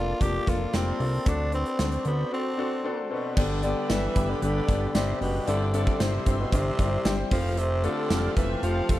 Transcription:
Already playing: analog synth bass F1, grand piano A#3 D4 F4 A4, tenor saxophone F4, analog synth pad F4 A#4 D5 A5
0.21 analog synth bass F1, grand piano A#3 D4 F4 A#4, tenor saxophone G4, kick, closed hi-hat
0.47 analog synth bass F1, grand piano A#3 D4 F4 A4, tenor saxophone F4, kick, closed hi-hat
0.73 analog synth bass F1, grand piano A#3 D4 F4 G4, tenor saxophone C4, snare, closed hi-hat
1.00 analog synth bass C2, grand piano A#3 D4 F4 A4, open hi-hat
1.26 analog synth bass D2, grand piano C4 D4 F#4 A4, tenor saxophone D4, analog synth pad F#4 C5 D5, kick, closed hi-hat
1.52 grand piano C4 D4 F#4 B4, tenor saxophone C4, closed hi-hat
1.66 closed hi-hat
1.79 analog synth bass D2, grand piano C4 D4 F#4 C5, snare, closed hi-hat
1.92 closed hi-hat
2.05 analog synth bass D2, tenor saxophone B3, grand piano C4 D4 F#4 A4, closed hi-hat
2.31 grand piano C4 D4 F#4 A4, tenor saxophone C4
2.58 grand piano C4 D4 F#4 A4
2.84 grand piano C4 D4 F#4 A4
3.10 tenor saxophone B2, grand piano C4 D4 F#4 A4, violin section B4
3.37 analog synth bass G1, tenor saxophone D3, grand piano G3 B3 D4 G4, analog synth pad G4 B4 D5 B5, violin section D5, kick, crash
3.63 tenor saxophone D3, grand piano G3 B3 D4 G4, violin section D5, closed hi-hat
3.89 analog synth bass G1, tenor saxophone E3, grand piano G3 B3 D4 A4, violin section E5, snare, closed hi-hat, tambourine
4.15 analog synth bass G1, grand piano G3 B3 D4 G4, kick, closed hi-hat
4.29 tenor saxophone D3, violin section D5
4.42 analog synth bass G1, tenor saxophone D3, grand piano G3 B3 D4 G4, violin section D5, closed hi-hat
4.68 analog synth bass G1, grand piano G3 B3 D4 G4, kick, closed hi-hat
4.95 analog synth bass G1, tenor saxophone C3, grand piano G3 B3 D4 G4, violin section C5, snare, closed hi-hat, tambourine
5.21 analog synth bass F#1, tenor saxophone B2, grand piano G3 B3 D4 G4, violin section B4, open hi-hat
5.47 analog synth bass G1, tenor saxophone D3, grand piano G3 C4 E4 G4, analog synth pad C5 E5 C6, violin section D5, closed hi-hat
5.73 tenor saxophone D3, grand piano G3 C4 E4 A4, violin section D5, closed hi-hat
5.87 kick
6.00 analog synth bass G1, tenor saxophone C3, grand piano G3 C4 E4 G4, violin section C5, snare, closed hi-hat, tambourine
6.26 analog synth bass G1, grand piano G3 C4 E4 G4, kick, closed hi-hat
6.40 tenor saxophone B2, violin section B4
6.52 analog synth bass G1, tenor saxophone C3, grand piano G3 C4 E4 G4, violin section C5, kick, closed hi-hat
6.79 analog synth bass G1, grand piano G3 C4 E4 G4, kick, closed hi-hat
7.05 analog synth bass G1, grand piano G3 C4 E4 G4, snare, closed hi-hat, tambourine
7.31 analog synth bass F1, tenor saxophone F3, grand piano A3 C4 F4 G4, analog synth pad G4 F5 A5, violin section F5, kick, open hi-hat
7.57 tenor saxophone C3, violin section C5, closed hi-hat
7.83 tenor saxophone D3, grand piano A3 C4 F4 A4, violin section D5, closed hi-hat
8.10 analog synth bass F1, grand piano A3 C4 F4 G4, snare, closed hi-hat, tambourine
8.36 analog synth bass F1, tenor saxophone E3, grand piano A3 C4 F4 G4, violin section E5, kick, closed hi-hat
8.62 analog synth bass F1, tenor saxophone F3, grand piano A3 C4 F4 G4, violin section F5, closed hi-hat
8.88 analog synth bass F1, grand piano A3 C4 F4 A4, kick, closed hi-hat

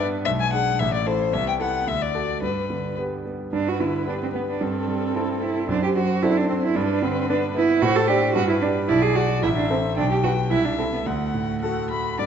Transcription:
Already playing: grand piano G2, cello B3
0.00 grand piano D4 B4
0.25 grand piano B1, cello G#3, violin E5
0.40 violin G#5
0.52 grand piano D4 G#4, violin F#5
0.79 grand piano A1, cello A3, violin E5
0.94 violin D5
1.06 grand piano E4 A4, violin C5
1.32 grand piano C2, cello B3, violin E5
1.48 violin G5
1.59 grand piano E4 A4, violin F#5
1.87 grand piano D2, cello A3, violin E5
2.02 violin D5
2.15 grand piano F#4 A4
2.42 grand piano G2, cello G3, violin B4
2.70 grand piano D3
2.98 grand piano B3 G4 B4
3.26 grand piano B3
3.53 grand piano G2, cello D4, violin B4
3.69 cello F#4
3.80 grand piano D3, cello E4
4.08 grand piano B3 G4 B4, cello D4
4.23 cello C4
4.34 grand piano B3, cello B3
4.50 cello D4
4.61 grand piano G2, cello C4, violin A4
4.88 grand piano G3
5.14 grand piano C4 E4 A4
5.42 grand piano C4, cello E4
5.69 grand piano F#2, cello D4, violin C5
5.83 cello G4
5.96 grand piano F#3, cello F#4
6.23 grand piano C4 D4 A4, cello E4
6.37 cello D4
6.49 cello C4, grand piano C4
6.63 cello E4
6.75 grand piano G2, cello D4, violin B4
7.02 grand piano D3, cello C4
7.29 grand piano B3 D4 D5, cello D4
7.55 grand piano B3, cello E4
7.82 grand piano A2, cello F#4, violin C5
7.96 cello A4
8.07 grand piano D4 D5, cello G4
8.35 grand piano G2, cello F#4, violin B4
8.49 cello E4
8.61 cello D4, grand piano G4 D5
8.88 grand piano B1, cello E4, violin D5
9.03 cello G#4
9.16 cello F#4, grand piano G#4 D5
9.43 grand piano A1, cello E4, violin E5
9.57 cello D4
9.70 cello C4, grand piano A4 C5
9.96 grand piano B1, cello D4, violin G5
10.11 cello G4
10.23 cello F#4, grand piano G4 B4
10.50 grand piano C2, cello E4, violin E5
10.65 cello D4
10.78 cello C4, grand piano E4 A4
10.93 cello B3
11.05 grand piano D2, cello A3, violin F#5
11.34 grand piano A2
11.62 grand piano A3 F#4 A4, violin F#5
11.90 grand piano A3, violin B5
12.19 grand piano G2, violin D5

